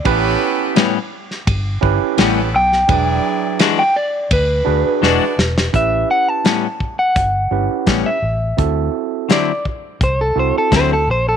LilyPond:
<<
  \new Staff \with { instrumentName = "Clean electric guitar" } { \time 4/4 \key a \mixolydian \tempo 4 = 84 r2. r8 g''8~ | g''4 r16 g''16 d''8 b'2 | e''8 fis''16 a''4 fis''4. e''8.~ | e''4 d''8 r8 c''16 a'16 c''16 a'16 c''16 a'16 c''16 a'16 | }
  \new Staff \with { instrumentName = "Horn section" } { \time 4/4 \key a \mixolydian <b cis' g' a' b'>4 r2 <b cis' g' a' b'>8 r8 | <fis d' e' gis' d''>4 r2 <d' e' fis' gis' d''>8 r8 | r1 | r1 | }
  \new Staff \with { instrumentName = "Tine electric piano" } { \time 4/4 \key a \mixolydian <cis' e' g' b'>4~ <cis' e' g' b'>16 r4 r16 <cis' e' g' b'>4 r8 | <fis d' gis' b'>4~ <fis d' gis' b'>16 r4 r16 <d' fis' gis' b'>4 r8 | <cis' e' g' b'>4~ <cis' e' g' b'>16 r4 r16 <cis' e' g' b'>4 r8 | <c' e' fis' a'>4~ <c' e' fis' a'>16 r4 r16 <c' e' fis' a'>4 r8 | }
  \new Staff \with { instrumentName = "Clean electric guitar" } { \time 4/4 \key a \mixolydian r4 <a, g b cis'>8 r4. <a, g b cis'>8 r8 | r4 <e gis d' fis'>8 r4. <e gis d' fis'>8 r8 | r4 <a, g b cis'>8 r4. <a, g b cis'>8 r8 | r4 <d fis c' e'>8 r4. <d fis c' e'>8 r8 | }
  \new Staff \with { instrumentName = "Fingered electric bass" } { \clef bass \time 4/4 \key a \mixolydian a,,8 r4. g,,8 g,,16 r16 a,,8 b,,8 | e,,8 r4. d,8 d,16 r16 e,,16 r16 e,,8 | a,,8 r4. g,,8 g,,16 r16 a,,16 r16 a,,8 | d,8 r4. c,8 c,16 r16 d,8 bes,,8 | }
  \new DrumStaff \with { instrumentName = "Drums" } \drummode { \time 4/4 <bd rb>4 <rb sn>8. sn16 <bd rb>8 bd8 <rb sn>8. sn16 | <bd rb>4 <rb sn>4 <bd rb>4 sn8 sn16 sn16 | <hh bd>4 <hh sn>8 bd8 <hh bd>4 <hh bd sn>4 | <hh bd>4 <hh sn>8 bd8 <hh bd>4 <hh bd sn>4 | }
>>